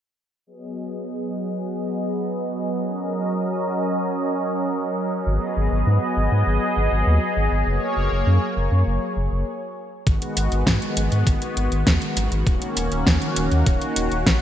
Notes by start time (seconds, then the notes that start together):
0.47 F#3 B3 G#4 D#5
2.87 C#4 A#4 D#5
5.27 G#1 B3 G#4 D#5
5.57 G#1
5.72 G#1
5.87 G#2
6.17 G#1
6.32 G#2
6.47 G#1
6.77 G#1
6.92 G#1
7.07 D#2
7.37 G#1
7.52 G#1
7.67 F#1 A#3 C#5
7.97 F#1
8.12 F#1
8.27 F#2
8.57 F#1
8.72 F#2
8.87 F#1
9.17 F#1
9.32 F#1
10.07 G#1 D#3 G#3 B3 F#4, kick, closed hi-hat
10.22 closed hi-hat
10.37 G#1, closed hi-hat
10.52 G#1, closed hi-hat
10.67 G#2, kick, snare, closed hi-hat
10.82 closed hi-hat
10.97 G#1, closed hi-hat
11.12 G#2, closed hi-hat
11.27 G#1, kick, closed hi-hat
11.42 closed hi-hat
11.57 G#1, closed hi-hat
11.72 G#1, closed hi-hat
11.87 D#2, kick, snare, closed hi-hat
12.02 closed hi-hat
12.17 G#1, closed hi-hat
12.32 G#1, closed hi-hat
12.47 D#1 A#3 C#4, kick, closed hi-hat
12.62 closed hi-hat
12.77 D#1, closed hi-hat
12.92 D#1, closed hi-hat
13.07 D#2, kick, snare, closed hi-hat
13.22 closed hi-hat
13.36 D#1, closed hi-hat
13.52 D#2, closed hi-hat
13.66 D#1, kick, closed hi-hat
13.82 closed hi-hat
13.96 D#1, closed hi-hat
14.12 D#1, closed hi-hat
14.26 A#1, kick, snare, closed hi-hat